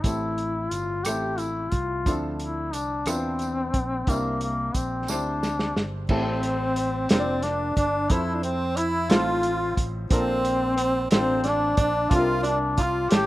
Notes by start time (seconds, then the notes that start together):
0.03 A1 A2 A3 C4 E4 G4 A4, kick, closed hi-hat, tambourine
0.38 closed hi-hat
0.71 G1 F4, closed hi-hat, tambourine
1.04 A1 A3 C4 E4 G4 A4, cross-stick, closed hi-hat, tambourine
1.38 E4, closed hi-hat, tambourine
1.72 C2 F4, kick, closed hi-hat
2.06 D2 D3 F3 C4 D4 E4 A4, kick, closed hi-hat, tambourine
2.40 E4, closed hi-hat
2.73 C2 D4, closed hi-hat, tambourine
3.06 E2 C4 D4 E4 F4 B4, cross-stick, closed hi-hat, tambourine
3.15 C5
3.39 cross-stick, closed hi-hat, tambourine
3.74 A#1, kick, closed hi-hat
4.07 C2 C3 A#3 C4 D4 E4 G4 A#4, kick, closed hi-hat, tambourine
4.41 A#3, closed hi-hat
4.75 A#1 C4, kick, closed hi-hat, tambourine
5.08 D2 C4 D4 E4 G4 C5, snare, tambourine
5.43 snare, tambourine
5.59 snare
5.76 G1, snare
6.09 A1 A2 A3 C4 E4 G4 A4, kick, crash
6.43 closed hi-hat
6.76 closed hi-hat
7.09 F1 A#3 C4 D4 F4 A#4 C5, snare, closed hi-hat
7.19 D5
7.42 D4, snare, closed hi-hat
7.76 G1 D4, kick, closed hi-hat
8.09 F2 F3 C4 E4 A4 C5, kick, closed hi-hat
8.34 D4
8.43 C4, closed hi-hat
8.77 E4, closed hi-hat
9.09 A1 A2 C4 D#4 F4 A4 C5, snare, closed hi-hat
9.43 closed hi-hat
9.77 A1, kick, closed hi-hat
10.10 A#1 A#2 C4 D4 F4 A4 A#4, kick, closed hi-hat
10.14 C4
10.45 closed hi-hat
10.77 C4, closed hi-hat
11.10 A1 C4 D4 F4 A4 C5, snare, closed hi-hat
11.15 C4
11.43 D4, snare, closed hi-hat
11.48 D4
11.77 A#1 D4, kick, closed hi-hat
11.82 D4
12.10 C2 C3 C4 D4 F4 G4 A4, kick, closed hi-hat
12.15 F4
12.19 A#4
12.43 D4, closed hi-hat
12.47 D4
12.78 F4, kick, closed hi-hat
12.82 F4
13.09 A1 A2 A3 C#4 E4 G4 A4, snare, closed hi-hat
13.16 G4